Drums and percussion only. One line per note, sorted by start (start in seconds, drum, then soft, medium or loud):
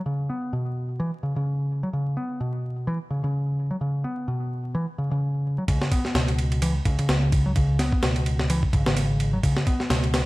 5.68 kick loud
5.68 ride medium
5.82 snare medium
5.92 kick loud
5.92 ride medium
6.05 snare soft
6.15 snare loud
6.15 ride medium
6.28 ride soft
6.39 ride medium
6.52 ride soft
6.62 ride loud
6.85 kick loud
6.85 ride medium
6.99 ride soft
7.09 snare loud
7.09 ride medium
7.32 kick loud
7.32 ride medium
7.56 kick loud
7.56 ride medium
7.79 snare soft
7.79 ride medium
7.92 kick medium
8.03 snare loud
8.03 ride medium
8.16 ride soft
8.26 ride medium
8.39 snare medium
8.50 ride medium
8.63 kick loud
8.73 kick loud
8.73 ride medium
8.86 snare loud
8.97 ride medium
9.20 ride medium
9.43 kick loud
9.43 ride medium
9.57 snare medium
9.67 kick loud
9.67 ride medium
9.80 snare soft
9.90 snare loud
9.90 ride medium
10.04 ride soft
10.14 snare loud
10.14 ride medium